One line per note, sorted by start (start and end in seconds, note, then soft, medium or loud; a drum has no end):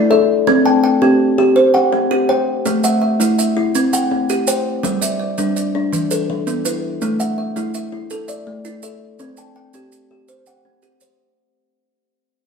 0.00 0.11 A3 medium
0.00 0.29 E4 medium
0.00 0.11 D5 medium
0.10 0.47 A4 medium
0.10 0.66 E5 medium
0.47 0.84 C4 medium
0.65 0.82 G5 medium
0.65 1.20 A5 medium
0.84 1.38 G5 medium
1.02 1.38 C4 medium
1.02 1.37 G4 medium
1.38 1.75 G4 medium
1.56 1.93 C5 medium
1.74 2.29 F#5 medium
1.74 2.28 G5 medium
1.93 2.29 C4 medium
2.11 2.48 G4 medium
2.29 2.66 C5 medium
2.29 2.84 G5 medium
2.66 3.02 A3 medium
2.66 maracas medium
2.84 3.00 E5 medium
2.84 3.39 F#5 medium
2.84 maracas medium
3.02 3.37 E5 medium
3.20 3.57 A3 medium
3.20 3.55 E4 medium
3.20 maracas medium
3.39 3.93 E5 medium
3.39 maracas medium
3.57 3.75 E4 medium
3.75 4.12 C4 medium
3.75 maracas medium
3.93 4.48 F#5 medium
3.93 4.47 G5 medium
3.93 maracas medium
4.11 4.48 C4 medium
4.29 4.66 G4 medium
4.29 maracas medium
4.47 4.84 C5 medium
4.47 5.02 G5 medium
4.47 maracas medium
4.83 5.20 G3 medium
4.83 maracas medium
5.02 5.18 D5 medium
5.02 5.57 E5 medium
5.02 maracas medium
5.20 5.55 D5 medium
5.38 5.75 G3 medium
5.38 5.74 D4 medium
5.38 maracas medium
5.56 6.11 D5 medium
5.56 maracas medium
5.75 5.93 D4 medium
5.93 6.29 E3 medium
5.93 maracas medium
6.11 6.66 A4 medium
6.11 6.64 B4 medium
6.11 maracas medium
6.30 6.66 E3 medium
6.47 6.84 B3 medium
6.47 maracas soft
6.65 7.02 E4 medium
6.65 7.20 B4 medium
6.65 maracas medium
7.02 7.38 A3 medium
7.02 maracas medium
7.20 7.37 E5 medium
7.20 7.75 F#5 medium
7.20 maracas medium
7.38 7.74 E5 medium
7.56 7.93 A3 medium
7.56 7.91 E4 medium
7.56 maracas medium
7.74 8.27 E5 medium
7.74 maracas medium
7.92 8.29 E4 medium
8.10 8.47 A4 medium
8.10 maracas medium
8.28 8.83 D5 medium
8.28 8.82 E5 medium
8.28 maracas medium
8.47 8.83 A3 medium
8.65 9.02 E4 medium
8.65 maracas medium
8.83 9.20 A4 medium
8.83 9.38 E5 medium
8.83 maracas medium
9.19 9.56 C4 medium
9.19 maracas medium
9.37 9.55 G5 medium
9.37 9.93 A5 medium
9.37 maracas medium
9.56 10.11 G5 medium
9.74 10.11 C4 medium
9.74 10.10 G4 medium
9.74 maracas medium
9.92 maracas medium
10.11 10.47 G4 medium
10.28 10.65 C5 medium
10.28 maracas medium
10.46 11.02 F#5 medium
10.46 11.02 G5 medium
10.46 maracas medium
10.65 11.02 C4 medium
10.82 11.19 G4 medium
10.82 maracas medium
11.00 11.38 C5 medium
11.00 maracas medium